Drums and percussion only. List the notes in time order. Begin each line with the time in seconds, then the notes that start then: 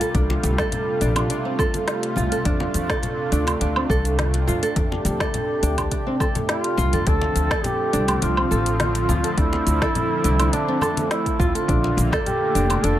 0.01 closed hi-hat, cabasa
0.15 kick, closed hi-hat, cabasa
0.30 muted conga
0.43 closed hi-hat, muted conga, cabasa
0.58 kick, snare, cabasa
0.72 closed hi-hat, low conga, cabasa
1.01 closed hi-hat, cabasa
1.16 closed hi-hat, muted conga, cabasa, low woodblock
1.30 closed hi-hat, cabasa
1.59 kick, muted conga, high conga, cabasa, low woodblock
1.74 closed hi-hat, high conga, cabasa
1.88 snare, closed hi-hat, cabasa
2.03 closed hi-hat
2.16 high conga, low conga, cabasa
2.32 closed hi-hat, cabasa
2.45 kick, closed hi-hat, cabasa
2.60 muted conga
2.74 closed hi-hat, cabasa
2.90 kick, snare, high conga, cabasa
3.03 closed hi-hat, low conga, cabasa
3.32 closed hi-hat, cabasa
3.47 closed hi-hat, muted conga, cabasa, low woodblock
3.61 closed hi-hat, cabasa
3.76 low woodblock
3.90 kick, cabasa
4.05 closed hi-hat, cabasa
4.19 snare, closed hi-hat, high conga, cabasa
4.34 closed hi-hat, muted conga
4.48 low conga, cabasa
4.63 closed hi-hat, cabasa
4.76 kick, closed hi-hat, cabasa
4.92 muted conga
5.05 closed hi-hat, muted conga, cabasa
5.20 kick, snare, high conga, cabasa
5.34 closed hi-hat, low conga, cabasa
5.63 closed hi-hat, cabasa
5.78 kick, closed hi-hat, muted conga, cabasa, low woodblock
5.91 kick, closed hi-hat, cabasa
6.20 kick, muted conga, high conga, cabasa, low woodblock
6.35 closed hi-hat, high conga, low conga, cabasa
6.49 snare, closed hi-hat, cabasa
6.64 closed hi-hat
6.77 muted conga, high conga, low conga, cabasa
6.93 closed hi-hat, high conga, cabasa
7.07 kick, closed hi-hat, cabasa
7.22 muted conga
7.36 closed hi-hat, cabasa
7.51 kick, snare, high conga, cabasa
7.64 closed hi-hat, low conga, cabasa
7.93 closed hi-hat, cabasa
8.08 closed hi-hat, muted conga, cabasa, low woodblock
8.22 closed hi-hat, cabasa
8.37 low woodblock
8.52 cabasa
8.66 closed hi-hat, cabasa
8.80 snare, closed hi-hat, high conga, cabasa
8.95 closed hi-hat, muted conga, cabasa
9.09 low conga, cabasa
9.24 closed hi-hat, cabasa
9.38 kick, closed hi-hat, cabasa
9.53 muted conga
9.67 closed hi-hat, muted conga, cabasa
9.82 kick, snare, high conga, cabasa
9.95 closed hi-hat, low conga, cabasa
10.24 closed hi-hat, cabasa
10.40 closed hi-hat, muted conga, cabasa, low woodblock
10.53 closed hi-hat, cabasa
10.81 muted conga, high conga, cabasa, low woodblock
10.97 closed hi-hat, high conga, cabasa
11.11 snare, closed hi-hat, cabasa
11.26 kick, closed hi-hat, cabasa
11.40 kick, high conga, low conga, cabasa
11.55 closed hi-hat, cabasa
11.68 kick, closed hi-hat, cabasa
11.84 muted conga
11.98 closed hi-hat, cabasa
12.13 kick, snare, high conga, cabasa
12.26 closed hi-hat, low conga, cabasa
12.55 closed hi-hat, cabasa
12.70 closed hi-hat, muted conga, cabasa, low woodblock
12.84 closed hi-hat, cabasa